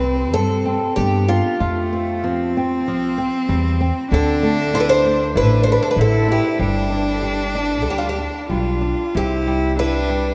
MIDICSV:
0, 0, Header, 1, 5, 480
1, 0, Start_track
1, 0, Key_signature, 0, "major"
1, 0, Tempo, 629591
1, 1228, Time_signature, 4, 2, 24, 8
1, 3144, Tempo, 621118
1, 6024, Tempo, 643087
1, 7884, End_track
2, 0, Start_track
2, 0, Title_t, "Twelve-string acoustic guitar"
2, 0, Program_c, 0, 25
2, 0, Note_on_c, 0, 71, 79
2, 253, Note_off_c, 0, 71, 0
2, 256, Note_on_c, 0, 69, 88
2, 729, Note_off_c, 0, 69, 0
2, 732, Note_on_c, 0, 67, 79
2, 979, Note_on_c, 0, 65, 64
2, 988, Note_off_c, 0, 67, 0
2, 2391, Note_off_c, 0, 65, 0
2, 3155, Note_on_c, 0, 69, 82
2, 3600, Note_off_c, 0, 69, 0
2, 3626, Note_on_c, 0, 72, 91
2, 3664, Note_off_c, 0, 72, 0
2, 3667, Note_on_c, 0, 71, 77
2, 3724, Note_off_c, 0, 71, 0
2, 3738, Note_on_c, 0, 72, 98
2, 4077, Note_off_c, 0, 72, 0
2, 4107, Note_on_c, 0, 71, 87
2, 4308, Note_off_c, 0, 71, 0
2, 4311, Note_on_c, 0, 72, 80
2, 4374, Note_off_c, 0, 72, 0
2, 4377, Note_on_c, 0, 71, 76
2, 4441, Note_off_c, 0, 71, 0
2, 4459, Note_on_c, 0, 69, 81
2, 4517, Note_off_c, 0, 69, 0
2, 4523, Note_on_c, 0, 71, 75
2, 4583, Note_off_c, 0, 71, 0
2, 4601, Note_on_c, 0, 69, 77
2, 4835, Note_off_c, 0, 69, 0
2, 4839, Note_on_c, 0, 67, 68
2, 5970, Note_off_c, 0, 67, 0
2, 6002, Note_on_c, 0, 69, 53
2, 6060, Note_off_c, 0, 69, 0
2, 6063, Note_on_c, 0, 67, 60
2, 6121, Note_on_c, 0, 65, 53
2, 6129, Note_off_c, 0, 67, 0
2, 6192, Note_off_c, 0, 65, 0
2, 6203, Note_on_c, 0, 67, 54
2, 6267, Note_off_c, 0, 67, 0
2, 7010, Note_on_c, 0, 67, 75
2, 7469, Note_off_c, 0, 67, 0
2, 7472, Note_on_c, 0, 71, 77
2, 7884, Note_off_c, 0, 71, 0
2, 7884, End_track
3, 0, Start_track
3, 0, Title_t, "Cello"
3, 0, Program_c, 1, 42
3, 0, Note_on_c, 1, 60, 91
3, 742, Note_on_c, 1, 59, 73
3, 753, Note_off_c, 1, 60, 0
3, 1219, Note_off_c, 1, 59, 0
3, 1224, Note_on_c, 1, 57, 89
3, 1710, Note_on_c, 1, 60, 103
3, 1722, Note_off_c, 1, 57, 0
3, 3133, Note_off_c, 1, 60, 0
3, 3138, Note_on_c, 1, 62, 104
3, 4065, Note_off_c, 1, 62, 0
3, 4105, Note_on_c, 1, 62, 85
3, 4581, Note_on_c, 1, 64, 94
3, 4593, Note_off_c, 1, 62, 0
3, 5048, Note_on_c, 1, 62, 100
3, 5060, Note_off_c, 1, 64, 0
3, 6502, Note_off_c, 1, 62, 0
3, 6510, Note_on_c, 1, 65, 77
3, 6996, Note_on_c, 1, 64, 87
3, 7007, Note_off_c, 1, 65, 0
3, 7472, Note_off_c, 1, 64, 0
3, 7477, Note_on_c, 1, 62, 92
3, 7884, Note_off_c, 1, 62, 0
3, 7884, End_track
4, 0, Start_track
4, 0, Title_t, "Nylon-string guitar"
4, 0, Program_c, 2, 24
4, 0, Note_on_c, 2, 48, 50
4, 28, Note_on_c, 2, 60, 50
4, 250, Note_off_c, 2, 60, 0
4, 259, Note_on_c, 2, 60, 53
4, 490, Note_off_c, 2, 60, 0
4, 499, Note_on_c, 2, 60, 52
4, 737, Note_off_c, 2, 60, 0
4, 743, Note_on_c, 2, 62, 56
4, 975, Note_off_c, 2, 62, 0
4, 984, Note_on_c, 2, 62, 46
4, 1194, Note_off_c, 2, 48, 0
4, 1218, Note_off_c, 2, 62, 0
4, 1222, Note_on_c, 2, 65, 61
4, 1469, Note_on_c, 2, 60, 53
4, 1703, Note_off_c, 2, 60, 0
4, 1706, Note_on_c, 2, 53, 51
4, 1941, Note_off_c, 2, 53, 0
4, 1959, Note_on_c, 2, 60, 53
4, 2186, Note_off_c, 2, 60, 0
4, 2193, Note_on_c, 2, 53, 49
4, 2421, Note_off_c, 2, 53, 0
4, 2424, Note_on_c, 2, 60, 55
4, 2657, Note_off_c, 2, 60, 0
4, 2659, Note_on_c, 2, 55, 51
4, 2894, Note_off_c, 2, 55, 0
4, 2902, Note_on_c, 2, 60, 53
4, 3109, Note_off_c, 2, 65, 0
4, 3135, Note_off_c, 2, 60, 0
4, 3141, Note_on_c, 2, 50, 65
4, 3380, Note_on_c, 2, 57, 56
4, 3615, Note_off_c, 2, 57, 0
4, 3617, Note_on_c, 2, 64, 51
4, 3852, Note_off_c, 2, 64, 0
4, 3863, Note_on_c, 2, 57, 56
4, 4091, Note_off_c, 2, 57, 0
4, 4096, Note_on_c, 2, 64, 51
4, 4327, Note_off_c, 2, 64, 0
4, 4333, Note_on_c, 2, 57, 53
4, 4567, Note_off_c, 2, 50, 0
4, 4567, Note_off_c, 2, 57, 0
4, 4576, Note_on_c, 2, 50, 53
4, 4810, Note_off_c, 2, 50, 0
4, 4813, Note_on_c, 2, 64, 53
4, 5047, Note_off_c, 2, 64, 0
4, 5053, Note_on_c, 2, 55, 59
4, 5290, Note_on_c, 2, 62, 47
4, 5527, Note_off_c, 2, 62, 0
4, 5532, Note_off_c, 2, 55, 0
4, 5541, Note_on_c, 2, 55, 48
4, 5775, Note_off_c, 2, 55, 0
4, 5791, Note_on_c, 2, 62, 46
4, 6023, Note_off_c, 2, 62, 0
4, 6030, Note_on_c, 2, 55, 46
4, 6259, Note_off_c, 2, 55, 0
4, 6271, Note_on_c, 2, 62, 43
4, 6503, Note_off_c, 2, 62, 0
4, 6504, Note_on_c, 2, 55, 40
4, 6741, Note_off_c, 2, 55, 0
4, 6743, Note_on_c, 2, 62, 41
4, 6980, Note_off_c, 2, 62, 0
4, 6991, Note_on_c, 2, 48, 59
4, 7233, Note_on_c, 2, 55, 45
4, 7464, Note_off_c, 2, 55, 0
4, 7469, Note_on_c, 2, 64, 45
4, 7700, Note_off_c, 2, 64, 0
4, 7703, Note_on_c, 2, 55, 49
4, 7884, Note_off_c, 2, 48, 0
4, 7884, Note_off_c, 2, 55, 0
4, 7884, End_track
5, 0, Start_track
5, 0, Title_t, "Upright bass"
5, 0, Program_c, 3, 32
5, 0, Note_on_c, 3, 36, 83
5, 267, Note_off_c, 3, 36, 0
5, 267, Note_on_c, 3, 43, 94
5, 581, Note_off_c, 3, 43, 0
5, 741, Note_on_c, 3, 43, 81
5, 1055, Note_off_c, 3, 43, 0
5, 1224, Note_on_c, 3, 41, 79
5, 2183, Note_off_c, 3, 41, 0
5, 2183, Note_on_c, 3, 36, 81
5, 2494, Note_off_c, 3, 36, 0
5, 2660, Note_on_c, 3, 40, 89
5, 2972, Note_off_c, 3, 40, 0
5, 3137, Note_on_c, 3, 38, 82
5, 4094, Note_on_c, 3, 33, 90
5, 4106, Note_off_c, 3, 38, 0
5, 4405, Note_off_c, 3, 33, 0
5, 4564, Note_on_c, 3, 33, 82
5, 4881, Note_off_c, 3, 33, 0
5, 5054, Note_on_c, 3, 31, 77
5, 6018, Note_off_c, 3, 31, 0
5, 6018, Note_on_c, 3, 38, 87
5, 6333, Note_off_c, 3, 38, 0
5, 6506, Note_on_c, 3, 35, 78
5, 6821, Note_off_c, 3, 35, 0
5, 6995, Note_on_c, 3, 36, 77
5, 7884, Note_off_c, 3, 36, 0
5, 7884, End_track
0, 0, End_of_file